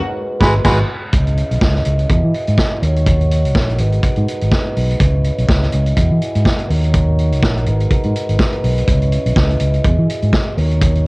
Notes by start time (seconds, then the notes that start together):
Already playing: G#3 F#4 A#4 B4
0.40 G#1 G#3 F#4 B4, kick, snare
0.64 G#1 G#3 F#4 B4, kick, snare, crash
1.12 C#2 C#3 C#4 E4 B4 D#5, kick, closed hi-hat
1.27 closed hi-hat
1.37 closed hi-hat
1.51 B1, closed hi-hat
1.61 C#2, kick, snare
1.75 snare
1.85 C#2, closed hi-hat
1.99 closed hi-hat
2.10 E2 E3 E4 F#4 G#4 D#5, kick, closed hi-hat
2.24 E3
2.34 closed hi-hat
2.47 G#2, closed hi-hat
2.58 kick, snare
2.83 D#2 D#3 D#4 F#4 A#4 C#5, closed hi-hat
2.96 closed hi-hat
3.06 kick, closed hi-hat
3.21 closed hi-hat
3.31 closed hi-hat
3.45 C#2, closed hi-hat
3.55 A#1, kick, snare
3.69 closed hi-hat
3.78 G#1 G#3 D#4 B4, closed hi-hat
3.92 closed hi-hat
4.03 muted fingered electric bass stroke, kick, closed hi-hat
4.16 G#2, closed hi-hat
4.28 closed hi-hat
4.41 G#1, closed hi-hat
4.52 kick, snare
4.76 B1, open hi-hat
4.91 closed hi-hat
4.99 C#2 C#3 C#4 E4 D#5, kick, closed hi-hat
5.24 closed hi-hat
5.38 B1, closed hi-hat
5.49 C#2, kick, snare
5.63 snare
5.72 C#2, closed hi-hat
5.86 closed hi-hat
5.97 E2 E3 E4 F#4 G#4, kick, closed hi-hat
6.11 E3
6.22 closed hi-hat
6.35 G#2, closed hi-hat
6.45 kick, snare
6.59 closed hi-hat
6.69 D#2 D#3 D#4 A#4 C#5, open hi-hat
6.84 closed hi-hat
6.93 kick, closed hi-hat
7.18 closed hi-hat
7.32 C#2, closed hi-hat
7.43 A#1, kick, snare
7.57 closed hi-hat
7.66 G#1 G#3 D#4 F#4 B4, closed hi-hat
7.80 closed hi-hat
7.91 muted fingered electric bass stroke, kick, closed hi-hat
8.04 G#2, closed hi-hat
8.16 closed hi-hat
8.29 G#1, closed hi-hat
8.39 kick, snare
8.53 closed hi-hat
8.64 B1, open hi-hat
8.78 closed hi-hat
8.88 C#2 C#3 C#4 E4 D#5, kick, closed hi-hat
9.02 closed hi-hat
9.12 closed hi-hat
9.26 B1, closed hi-hat
9.36 C#2, kick, snare
9.51 closed hi-hat
9.60 C#2, closed hi-hat
9.74 closed hi-hat
9.84 E2 E3 F#4 G#4, kick, closed hi-hat
9.98 E3
10.10 closed hi-hat
10.22 G#2, closed hi-hat
10.33 kick, snare
10.57 D#2 D#3 D#4 A#4 C#5, open hi-hat
10.71 closed hi-hat
10.81 kick, closed hi-hat
10.95 closed hi-hat